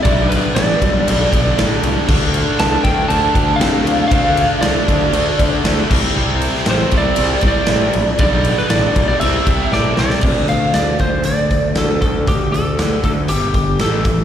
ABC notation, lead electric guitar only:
X:1
M:4/4
L:1/16
Q:1/4=118
K:Gmix
V:1 name="Lead electric guitar"
d2 B2 d8- d2 z2 | z4 a2 g2 a4 f4 | f4 d8 z4 | z4 c2 d4 d6 |
d3 B d3 d e4 d2 d2- | d2 f2 d2 c2 d4 A2 A2 | G2 A4 A2 G2 G2 A3 z |]